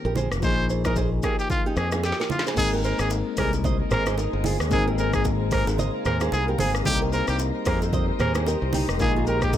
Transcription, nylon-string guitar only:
0.05 0.14 G4 medium
0.05 0.14 A#4 medium
0.17 0.29 G#4 medium
0.17 0.28 C5 medium
0.70 0.82 G#4 medium
0.70 0.82 C5 medium
0.86 0.95 C5 medium
0.86 0.94 D#5 medium
0.97 1.09 G#4 medium
0.97 1.09 C5 medium
1.24 1.36 G4 medium
1.24 1.35 A#4 medium
1.66 1.75 D#4 medium
1.66 1.74 G4 medium
1.93 2.02 F4 medium
1.93 2.01 G#4 medium
2.20 2.29 G4 medium
2.20 2.28 A#4 medium
2.47 2.55 G#4 medium
2.47 2.55 C5 medium
2.73 2.82 G4 medium
2.73 2.82 A#4 medium
2.85 2.97 G#4 medium
2.85 2.96 C5 medium
3.38 3.50 G#4 medium
3.38 3.50 C5 medium
3.65 3.77 C5 medium
3.65 3.76 D#5 medium
3.92 4.04 G#4 medium
3.92 4.03 C5 medium
4.07 4.16 G#4 medium
4.07 4.15 C5 medium
4.18 4.30 D#4 medium
4.18 4.30 A#4 medium
4.45 4.57 F4 medium
4.45 4.57 G#4 medium
4.88 4.96 G4 medium
4.88 4.96 A#4 medium
4.99 5.11 G#4 medium
4.99 5.10 C5 medium
5.52 5.64 G#4 medium
5.52 5.64 C5 medium
5.79 5.91 C5 medium
5.79 5.91 D#5 medium
6.06 6.18 G#4 medium
6.06 6.17 C5 medium
6.21 6.30 G#4 medium
6.21 6.30 C5 medium
6.48 6.57 G4 medium
6.48 6.56 A#4 medium
6.59 6.72 G#4 medium
6.59 6.71 C5 medium
7.02 7.11 G4 medium
7.02 7.10 A#4 medium
7.13 7.25 G#4 medium
7.13 7.25 C5 medium
7.67 7.79 G#4 medium
7.67 7.78 C5 medium
7.93 8.05 C5 medium
7.93 8.05 D#5 medium
8.20 8.32 G#4 medium
8.20 8.32 C5 medium
8.36 8.45 G#4 medium
8.36 8.44 C5 medium
8.47 8.59 G4 medium
8.47 8.59 A#4 medium
8.74 8.86 D#4 medium
8.74 8.85 G4 medium
9.16 9.25 F4 medium
9.16 9.24 G#4 medium
9.27 9.39 G4 medium
9.27 9.39 A#4 medium

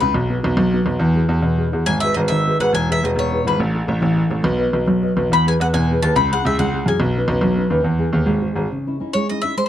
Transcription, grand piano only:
0.01 0.10 C#2 medium
0.14 0.33 B1 medium
0.44 0.53 B1 medium
0.57 0.76 B1 loud
0.86 0.95 B1 medium
0.99 1.19 E2 loud
1.29 1.38 E2 medium
1.42 1.62 E2 medium
1.73 1.82 E2 medium
1.86 2.06 G#1 medium
2.16 2.26 G#1 medium
2.30 2.49 G#1 medium
2.60 2.69 G#1 medium
2.73 2.92 E1 medium
3.03 3.12 E1 medium
3.16 3.35 E1 medium
3.47 3.55 G#1 medium
3.60 3.79 A1 medium
3.88 3.97 A1 medium
4.02 4.21 A1 medium
4.31 4.39 A1 medium
4.44 4.63 B1 loud
4.73 4.82 B1 medium
4.88 5.06 B1 medium
5.17 5.25 B1 medium
5.32 5.50 E2 medium
5.60 5.68 E2 medium
5.73 5.92 E2 medium
6.03 6.11 D#2 medium
6.16 6.34 C#2 medium
6.45 6.53 C#2 medium
6.59 6.77 C#2 medium
6.86 6.95 F#2 medium
7.00 7.18 B1 loud
7.28 7.37 B1 medium
7.41 7.60 B1 medium
7.70 7.79 D#2 medium
7.84 8.03 E2 medium
8.13 8.26 D#2 medium
8.26 8.45 G#1 medium
8.55 8.65 G#1 medium

